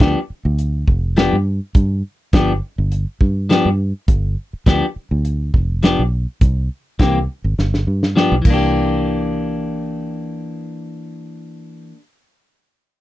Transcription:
0.00 fingered electric bass D2, clean electric guitar F3 B3 D4 G4, kick, snare, closed hi-hat
0.30 muted fingered electric bass stroke
0.45 fingered electric bass D2
0.59 closed hi-hat
0.88 fingered electric bass F1, kick
1.17 clean electric guitar F3 B3 D4 G4, snare, closed hi-hat
1.33 fingered electric bass G2
1.75 fingered electric bass G2, kick, closed hi-hat
2.33 fingered electric bass G1, clean electric guitar F3 B3 D4 G4, kick, snare, closed hi-hat
2.78 fingered electric bass G1
2.92 closed hi-hat
3.21 fingered electric bass G2, kick
3.49 clean electric guitar F3 B3 D4 G4, snare, closed hi-hat
3.65 fingered electric bass G2
4.08 fingered electric bass G1, kick, closed hi-hat
4.53 muted fingered electric bass stroke
4.66 fingered electric bass D2, clean electric guitar F3 B3 D4 G4, kick, snare, closed hi-hat
4.96 muted fingered electric bass stroke
5.11 fingered electric bass D2
5.25 closed hi-hat
5.54 fingered electric bass F1, kick
5.83 clean electric guitar F3 B3 D4 G4, snare, closed hi-hat
5.99 fingered electric bass B1
6.41 fingered electric bass C2, kick, closed hi-hat
6.99 fingered electric bass C2, clean electric guitar E3 A#3 C4 G4, kick, snare, closed hi-hat
7.44 fingered electric bass G#1
7.58 fingered electric bass G1, snare
7.74 snare
7.87 fingered electric bass G2
8.03 snare
8.16 clean electric guitar F3 B3 D4 G4, snare
8.32 fingered electric bass B1
8.42 fingered electric bass C2, clean electric guitar E3, kick, crash
8.46 clean electric guitar A#3 D4
8.54 clean electric guitar G4

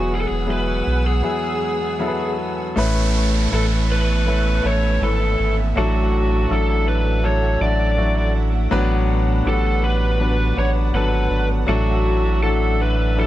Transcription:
Already playing: sub bass E1, clean electric guitar E2 B3 F#4, grand piano F#3 B3 E4 G#4, lead electric guitar F#4, string section B4 F#5 G#5 E6
0.11 clean electric guitar G#3
0.15 lead electric guitar G#4
0.21 lead electric guitar A4
0.28 sub bass E1, clean electric guitar B3, lead electric guitar G#4
0.46 grand piano F#3 B3 E4 G#4, clean electric guitar G#3
0.51 lead electric guitar B4
0.67 clean electric guitar F#4
0.86 sub bass B1, clean electric guitar B3
1.04 clean electric guitar F#4, lead electric guitar G#4
1.23 clean electric guitar E2, grand piano F#3 B3 E4 G#4
1.43 clean electric guitar B3
1.62 clean electric guitar G#3
1.81 clean electric guitar B3
2.00 grand piano F#3 B3 E4 A4, clean electric guitar G#3
2.08 grand piano B4
2.19 clean electric guitar F#4
2.38 clean electric guitar B3
2.58 clean electric guitar F#4
2.76 sub bass A1, clean electric guitar A2, grand piano A2 A3 C#4 E4 B4, string section B4 E5 A5 C#6, downlifter
2.96 clean electric guitar B3
3.15 clean electric guitar E4
3.34 clean electric guitar C#4
3.51 sub bass A1, clean electric guitar E3, grand piano A3 C#4 E4 B4, lead electric guitar A4
3.71 clean electric guitar E4
3.90 clean electric guitar C#4, lead electric guitar B4
4.08 clean electric guitar B3
4.26 grand piano A3 C#4 E4 B4
4.45 clean electric guitar B3
4.63 sub bass A1, grand piano A3 C#4 E4 B4, clean electric guitar E4, lead electric guitar C#5
4.83 clean electric guitar C#4
5.02 sub bass G#1, clean electric guitar E3, grand piano A3 C#4 E4 B4, lead electric guitar A4
5.20 clean electric guitar E4
5.38 sub bass G#1, clean electric guitar C#4
5.57 clean electric guitar B3
5.75 sub bass A1, clean electric guitar A2, grand piano A2 F#3 D4 E4 A4, lead electric guitar F#4, string section A4 F#5
5.94 clean electric guitar A3
6.13 clean electric guitar E4
6.32 clean electric guitar D4
6.49 sub bass A1, grand piano F#3 D4 E4 A4, clean electric guitar F#3, lead electric guitar A4
6.69 clean electric guitar E4
6.88 clean electric guitar D4, lead electric guitar B4
7.06 clean electric guitar A3
7.23 clean electric guitar A2, grand piano F#3 D4 E4 A4, lead electric guitar C#5
7.43 clean electric guitar A3
7.61 sub bass A1, grand piano F#3 D4 E4 F#4, clean electric guitar E4, lead electric guitar D5
7.80 clean electric guitar D4
7.97 grand piano F#3 D4 E4 F#4, clean electric guitar F#3
8.17 clean electric guitar E4
8.35 clean electric guitar D4
8.53 clean electric guitar A3
8.70 sub bass A1, grand piano A2 F#3 B3 D4 B4, clean electric guitar A2, string section D4 B4
8.90 clean electric guitar B3
9.09 clean electric guitar F#4
9.28 clean electric guitar D4
9.44 sub bass A1, clean electric guitar D3, grand piano F#3 B3 D4 G4, lead electric guitar A4
9.53 grand piano F#4
9.64 clean electric guitar F#4
9.82 clean electric guitar D4, lead electric guitar B4
10.01 clean electric guitar B3
10.19 grand piano F#3 B3 D4 B4
10.39 clean electric guitar B3
10.57 sub bass A1, grand piano F#3 B3 D4 B4, clean electric guitar F#4, lead electric guitar C#5
10.75 clean electric guitar D4
10.93 sub bass G#1, clean electric guitar D3, grand piano F#3 B3 D4 A4, lead electric guitar B4
11.12 clean electric guitar F#4
11.30 sub bass G#1, clean electric guitar D4
11.50 clean electric guitar B3
11.67 sub bass A1, grand piano A2 F#3 D4 E4 A4, clean electric guitar A2, string section A3 E5, lead electric guitar F#4
11.87 clean electric guitar A3
12.06 clean electric guitar E4
12.25 clean electric guitar D4
12.43 grand piano F#3 D4 E4 F#4, clean electric guitar F#3, lead electric guitar A4
12.63 clean electric guitar E4
12.81 clean electric guitar D4, lead electric guitar B4
13.01 clean electric guitar A3
13.16 clean electric guitar A2, grand piano F#3 D4 E4 B4, lead electric guitar A4

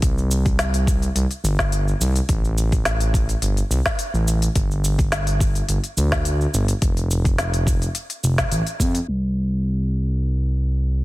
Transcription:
0.02 analog synth bass C2, kick, open hi-hat, shaker
0.18 shaker
0.31 shaker
0.46 kick, open hi-hat, shaker
0.59 snare, open hi-hat, shaker
0.74 open hi-hat, shaker
0.87 kick, shaker
1.02 open hi-hat, shaker
1.16 analog synth bass C2, open hi-hat, shaker
1.31 open hi-hat, shaker
1.44 analog synth bass G1, shaker
1.59 kick, snare, shaker
1.72 open hi-hat, shaker
1.88 shaker
2.00 analog synth bass C2, shaker
2.16 open hi-hat, shaker
2.29 analog synth bass A1, kick, open hi-hat, shaker
2.45 shaker
2.58 shaker
2.72 kick, open hi-hat, shaker
2.85 snare, open hi-hat, shaker
3.00 open hi-hat, shaker
3.14 kick, shaker
3.29 open hi-hat, shaker
3.42 analog synth bass G1, open hi-hat, shaker
3.57 open hi-hat, shaker
3.70 analog synth bass C2, shaker
3.86 kick, snare, shaker
3.99 open hi-hat, shaker
4.14 analog synth bass A1, shaker
4.28 shaker
4.42 open hi-hat, shaker
4.55 analog synth bass G1, kick, open hi-hat, shaker
4.71 shaker
4.84 shaker
4.99 kick, open hi-hat, shaker
5.12 snare, open hi-hat, shaker
5.27 open hi-hat, shaker
5.40 kick, shaker
5.55 open hi-hat, shaker
5.69 analog synth bass G1, open hi-hat, shaker
5.84 open hi-hat, shaker
5.97 analog synth bass D2, shaker
6.12 kick, snare, shaker
6.25 open hi-hat, shaker
6.41 shaker
6.54 analog synth bass G1, shaker
6.68 open hi-hat, shaker
6.82 analog synth bass F1, kick, open hi-hat, shaker
6.97 open hi-hat, shaker
7.11 shaker
7.25 kick, open hi-hat, shaker
7.38 snare, open hi-hat, shaker
7.54 open hi-hat, shaker
7.67 kick, shaker
7.82 open hi-hat, shaker
7.95 open hi-hat, shaker
8.10 open hi-hat, shaker
8.24 analog synth bass F1, shaker
8.38 kick, snare, open hi-hat, shaker
8.52 analog synth bass A1, open hi-hat, shaker
8.67 open hi-hat, shaker
8.80 analog synth bass F2, kick, shaker
8.95 open hi-hat, shaker
9.08 analog synth bass C2
9.24 shaker
9.37 shaker
9.52 shaker
9.65 shaker
9.80 shaker
9.93 shaker
10.08 shaker
10.22 shaker
10.37 shaker
10.50 shaker
10.65 shaker
10.78 shaker
10.93 shaker

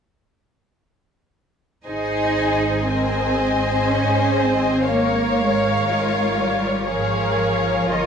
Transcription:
1.86 double bass section G#1, cello section D#4, viola section G#4 C5, violin section G#4 D#5 G#5
2.87 cello section C4, viola section G#4 C5, violin section A#4 D#5 G#5
3.38 violin section C5
3.89 cello section C#4
4.40 cello section C4
4.90 cello section A#3, viola section A#4 C#5, violin section C#5 F5
5.40 cello section G#3
5.88 violin section F4
6.38 cello section G3
6.86 cello section F3, violin section G#4 C#5 F5, viola section A#4 C#5
7.90 double bass section G1, cello section F4, violin section A#4 D#5, viola section A#4 C#5

